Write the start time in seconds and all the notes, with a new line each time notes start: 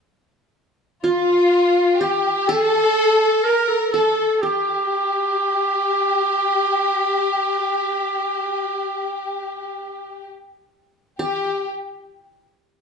1.04 F4
2.00 G4
2.48 G#4 A4
2.65 A4
3.43 A#4
3.68 A4
3.92 A4
4.41 G4
11.19 G4